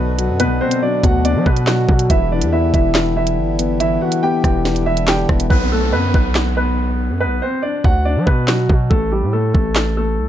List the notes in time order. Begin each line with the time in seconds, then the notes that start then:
Already playing: B1 B2 D3 F#3 B3 F#4 B4
0.18 F#3, closed hi-hat
0.29 F#2
0.40 B2 B3 B4, closed hi-hat
0.45 B1
0.61 B2 C4 C5
0.71 closed hi-hat
0.82 F#3 D4 D5
1.03 D2 B2 F#4 F#5, kick, closed hi-hat
1.25 B2 D4 D5, closed hi-hat
1.35 F#3
1.46 B2 B3 B4, kick
1.56 closed hi-hat
1.67 F#3 F#4, snare, clap
1.89 B2 F#3, kick
1.99 closed hi-hat
2.10 E1 E3 G3 B3 E4 E5, kick, closed hi-hat
2.31 E3 D4 D5
2.42 E2, closed hi-hat
2.52 B3 E4 E5
2.74 E1 E3 E4 E5, kick, closed hi-hat
2.95 E3, snare, clap, closed hi-hat
3.16 E3 E4 E5
3.27 closed hi-hat
3.38 G1
3.59 B3, closed hi-hat
3.80 E3 E4 E5, closed hi-hat
4.01 E3 F#4 F#5
4.12 closed hi-hat
4.23 B3 G4 G5
4.44 E1 E3 G4 G5, kick, cross-stick, closed hi-hat
4.65 E3, snare, closed hi-hat
4.76 closed hi-hat
4.86 E3 E4 E5
4.97 closed hi-hat
5.07 G4 G5, snare, clap
5.29 E1 B3, kick, cross-stick
5.40 closed hi-hat
5.50 B1 B3 B4, kick, downlifter
5.72 A3 A4
5.93 F#2 B3 B4
6.14 B1 B3 B4, kick
6.35 snare, clap
6.57 B3 B4
7.10 F#2
7.20 B3 B4
7.26 B1
7.42 C4 C5
7.62 D4 D5
7.84 D2 F#4 F#5, kick
8.05 D4 D5
8.16 F#3
8.26 B2 B3 B4, kick
8.48 F#3 F#4, snare, clap
8.69 B2, kick
8.90 A1 A3 A4, kick
9.12 G3 G4
9.23 A2
9.33 A3 A4
9.54 A1 A3 A4, kick
9.75 snare, clap
9.97 A3 A4
10.18 C2